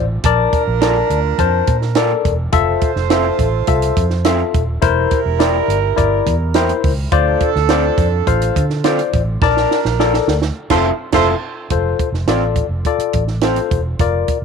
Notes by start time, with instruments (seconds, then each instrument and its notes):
Already playing: fingered electric bass A1
0.23 fingered electric bass A#1, horn section D4 F4 A#4, tine electric piano A#4 D5 A5, kick, closed hi-hat
0.53 kick, closed hi-hat
0.67 fingered electric bass A#1
0.81 clean electric guitar A#3 F4 A4 D5, tine electric piano A#4 D5 A5, snare, closed hi-hat
1.10 fingered electric bass D2, closed hi-hat
1.38 fingered electric bass F2, tine electric piano A#4 C5 A5, kick, closed hi-hat
1.67 fingered electric bass A#2, kick, closed hi-hat
1.82 snare
1.95 clean electric guitar A#3 F4 A4 D5, tine electric piano A4 A#4 D5, snare, closed hi-hat
2.25 fingered electric bass E1, kick, closed hi-hat
2.52 fingered electric bass F1, tine electric piano F4 A4 E5, horn section F4 A4 C5, kick, closed hi-hat
2.81 kick, closed hi-hat
2.96 fingered electric bass F1, snare
3.10 clean electric guitar C4 E4 A4 C5, tine electric piano F4 A4 E5, snare, closed hi-hat
3.39 fingered electric bass A1, kick, closed hi-hat
3.67 fingered electric bass C2, tine electric piano F4 A4 E5, kick, closed hi-hat
3.82 closed hi-hat
3.96 fingered electric bass F2, kick, closed hi-hat
4.10 snare
4.25 clean electric guitar C4 E4 A4 C5, tine electric piano F4 A4 E5, snare, closed hi-hat
4.54 fingered electric bass D#1, kick, closed hi-hat
4.82 fingered electric bass E1, tine electric piano E4 A#4 C5, horn section E4 G4 A#4, kick, closed hi-hat
5.11 kick, closed hi-hat
5.26 fingered electric bass E1
5.39 clean electric guitar A#3 E4 G4 C5, tine electric piano E4 A#4 D5, snare, closed hi-hat
5.68 fingered electric bass G1, closed hi-hat
5.96 fingered electric bass G1, tine electric piano E4 A#4 D5, kick, closed hi-hat
6.26 fingered electric bass E2, kick, closed hi-hat
6.54 clean electric guitar A#3 E4 G4 C5, tine electric piano E4 A#4 C5, snare, closed hi-hat
6.69 closed hi-hat
6.84 fingered electric bass C#2, kick, open hi-hat
7.11 fingered electric bass D2, horn section D4 F4 A4, tine electric piano F4 C5 D5, kick, closed hi-hat
7.40 kick, closed hi-hat
7.56 fingered electric bass D2, snare
7.69 clean electric guitar C4 F4 A4 D5, tine electric piano F4 C5 D5, snare, closed hi-hat
7.98 fingered electric bass F2, kick, closed hi-hat
8.27 fingered electric bass A1, tine electric piano F4 C5 F5, kick, closed hi-hat
8.41 closed hi-hat
8.56 fingered electric bass D3, kick, closed hi-hat
8.70 snare
8.84 clean electric guitar C4 F4 A4 D5, tine electric piano F4 C5 D5, snare, closed hi-hat
8.99 closed hi-hat
9.13 fingered electric bass A1, kick, closed hi-hat
9.41 fingered electric bass A#1, horn section D4 F4 A#4, tine electric piano A#4 D5 A5, kick, snare
9.57 snare
9.71 snare
9.85 fingered electric bass A#1, snare
9.99 clean electric guitar A#3 F4 A4 D5, tine electric piano A4 A#4 D5, snare
10.14 snare
10.28 fingered electric bass D2, snare
10.42 snare
10.70 fingered electric bass F1, clean electric guitar C4 E4 A4 C5, horn section F4 A4 C5, tine electric piano F4 A4 E5, kick, snare, crash
11.12 fingered electric bass F1, clean electric guitar C4 E4 A4 C5, horn section F4 A4 C5, tine electric piano F4 A4 E5, kick, snare, crash
11.70 fingered electric bass F1, tine electric piano F4 A4 C5, kick, closed hi-hat
11.99 kick, closed hi-hat
12.12 fingered electric bass F1, snare
12.26 fingered electric bass A1, clean electric guitar C4 F4 A4 C5, tine electric piano F4 A4 D5, snare, closed hi-hat
12.56 kick, closed hi-hat
12.69 fingered electric bass F1
12.85 tine electric piano F4 A4 D5, kick, closed hi-hat
12.98 muted fingered electric bass stroke, closed hi-hat
13.13 fingered electric bass A1, kick, closed hi-hat
13.27 snare
13.41 clean electric guitar C4 F4 A4 C5, tine electric piano F4 A4 C5, snare, closed hi-hat
13.56 closed hi-hat
13.71 fingered electric bass E1, kick, closed hi-hat
13.99 fingered electric bass F1, tine electric piano F4 A#4 D5, kick, closed hi-hat
14.28 kick, closed hi-hat
14.42 fingered electric bass F1